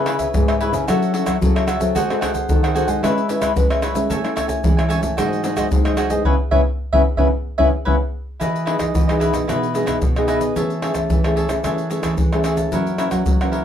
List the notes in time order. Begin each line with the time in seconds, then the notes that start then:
Already playing: C#3 B3 E4 G#4
0.06 E4 B4 C#5 E5, pandeiro, tamborim
0.19 B4 C#5 E5, pandeiro, shaker, surdo
0.34 G#2 B3 E4 G#4, pandeiro, shaker, surdo
0.48 B4 C#5 E5, pandeiro, tamborim, shaker
0.60 B3 E4 G#4 B4 C#5 E5, pandeiro
0.73 C#3 B4 C#5 E5, pandeiro, shaker, surdo
0.88 F#3 C#4 E4 F#4 A4 C#5 E5, pandeiro, tamborim, shaker, surdo
1.02 pandeiro, shaker
1.14 C#4 E4 F#4 A4 C#5 E5, pandeiro
1.26 F#3 F#4 A4 C#5 E5, pandeiro, tamborim, shaker, surdo
1.41 C#3 F#3 C#4 E4 A4, pandeiro, shaker, surdo
1.55 A4 C#5 E5, pandeiro, tamborim, shaker
1.67 F#4 A4 C#5 E5, pandeiro, tamborim, shaker
1.80 F#3 C4 F#4 A4 C#5 E5, pandeiro, shaker, surdo
1.95 G#3 F#4 G#4 C5 F#5, pandeiro, shaker, surdo
2.10 C4 F#4 A4, pandeiro, tamborim, shaker
2.21 F#4 G#4 C5 F#5, pandeiro, tamborim, shaker, surdo
2.34 G#4 C5 F#5, pandeiro, shaker, surdo
2.49 D#3 C4 F#4 A4, pandeiro, shaker, surdo
2.63 G#4 C5 F#5, pandeiro, tamborim, shaker
2.74 C4 F#4 G#4 A4 C5 F#5, pandeiro, shaker
2.87 G#3 G#4 C5 F#5, pandeiro, shaker, surdo
3.03 G#3 C#4 E4 B4 C#5 E5, pandeiro, tamborim, shaker, surdo
3.18 pandeiro, shaker
3.29 C#4 E4 B4 C#5 E5, pandeiro, shaker
3.41 G#3 E4 B4 C#5 E5, pandeiro, tamborim, shaker, surdo
3.56 G#3 C#4 E4 B4, pandeiro, shaker, surdo
3.70 B4 C#5 E5, pandeiro, tamborim, shaker
3.82 E4 B4 C#5 E5, pandeiro, tamborim, shaker
3.95 G#3 C#4 E4 B4 C#5 E5, pandeiro, shaker, surdo
4.10 A2 A3 A4 C#5 E5 G#5, pandeiro, shaker, surdo
4.24 C#4 E4, pandeiro, tamborim, shaker
4.36 A4 C#5 E5 G#5, pandeiro, tamborim, shaker, surdo
4.48 C#5 E5 G#5, pandeiro, shaker, surdo
4.64 E3 G#3 C#4 E4, pandeiro, shaker, surdo
4.77 C#5 E5 G#5, pandeiro, tamborim, shaker
4.89 G#3 C#4 E4 A4 C#5 E5 G#5, pandeiro, shaker
5.02 A3 C#5 E5 G#5, pandeiro, shaker, surdo
5.17 G#2 F#3 G#3 C4 D#4 F#4 G#4 C5 D#5, pandeiro, tamborim, shaker, surdo
5.33 pandeiro, shaker
5.44 F#3 C4 D#4 F#4 G#4 C5 D#5, pandeiro, shaker
5.56 G#3 F#4 G#4 C5 D#5, pandeiro, tamborim, shaker, surdo
5.71 D#3 F#3 G#3 C4 D#4, pandeiro, shaker, surdo
5.85 G#4 C5 D#5, pandeiro, tamborim, shaker
5.97 F#4 G#4 C5 D#5, pandeiro, tamborim, shaker
6.10 G#3 B3 E4 G#4 C5 D#5, pandeiro, shaker, surdo
6.25 C#3 B3 C#4 E4 B4 C#5 E5, surdo
6.51 C#3 B3 C#4 E4 B4 C#5 E5, surdo
6.93 C#3 B3 C#4 E4 B4 C#5 E5, surdo
7.17 C#3 B3 C#4 E4 B4 C#5 E5, surdo
7.58 C#3 B3 C#4 E4 B4 C#5 E5, surdo
7.85 C#3 B3 C#4 E4 B4 C#5 E5, surdo
8.40 E3 E4 G#4 B4 D#5, pandeiro, shaker, surdo
8.56 pandeiro, shaker
8.66 B3 D#4 E4 G#4 B4 D#5, pandeiro, tamborim
8.79 E3 G#4 B4 D#5, pandeiro, tamborim, shaker, surdo
8.95 B2 E3, pandeiro, shaker, surdo
9.07 B3 D#4 G#4 B4 D#5, pandeiro, tamborim, shaker
9.20 E4 G#4 B4 D#5, pandeiro, shaker, surdo
9.32 B2 G#4 B4 D#5, pandeiro, tamborim, shaker, surdo
9.48 B2 E3 B3 D#4 E4 G#4 B4 D#5, pandeiro, tamborim, shaker, surdo
9.63 pandeiro, shaker
9.74 B3 D#4 E4 G#4 B4 D#5, pandeiro, shaker
9.86 B2 E4 G#4 B4 D#5, pandeiro, tamborim, shaker, surdo
10.02 B2, pandeiro, shaker, surdo
10.16 B3 D#4 G#4 B4 D#5, pandeiro, tamborim, shaker
10.27 E4 G#4 B4 D#5, pandeiro, tamborim, shaker
10.40 G#4 B4 D#5, pandeiro, shaker, surdo
10.56 E3 A3 C#4 G#4 C#5 E5 A5, pandeiro, shaker, surdo
10.70 pandeiro, shaker
10.82 A3 C#4 G#4 C#5 E5 A5, pandeiro, tamborim
10.94 E3 C#5 E5 A5, pandeiro, tamborim, shaker, surdo
11.10 E3, pandeiro, shaker, surdo
11.24 A3 C#4 G#4 C#5 E5 A5, pandeiro, tamborim, shaker
11.36 G#4 C#5 E5 A5, pandeiro, surdo
11.48 E3 A3 C#4 G#4 C#5 E5 A5, pandeiro, tamborim, shaker, surdo
11.64 E3 A3 C#4 G#4 C#5 E5 A5, pandeiro, tamborim, shaker, surdo
11.78 pandeiro, shaker
11.90 A3 C#4 G#4 C#5 E5 A5, pandeiro, shaker
12.03 E3 G#4 C#5 E5 A5, pandeiro, tamborim, shaker, surdo
12.18 E3, pandeiro, shaker, surdo
12.32 A3 C#4 G#4 C#5 E5 A5, pandeiro, tamborim, shaker
12.44 G#4 C#5 E5 A5, pandeiro, tamborim, shaker
12.57 C#5 E5 A5, pandeiro, shaker, surdo
12.72 F#2 E3 F#3 A#3 C#4 E4 A#4 C#5 F#5, pandeiro, shaker, surdo
12.87 pandeiro, shaker
12.98 E3 A#3 C#4 E4 A#4 C#5 F#5, pandeiro, tamborim, shaker
13.11 F#3 A#4 C#5 F#5, pandeiro, tamborim, shaker, surdo
13.26 C#3 F#3, pandeiro, shaker, surdo
13.41 E3 A#3 C#4 A#4 C#5 F#5, pandeiro, tamborim, shaker
13.52 E4 A#4 C#5 F#5, pandeiro, surdo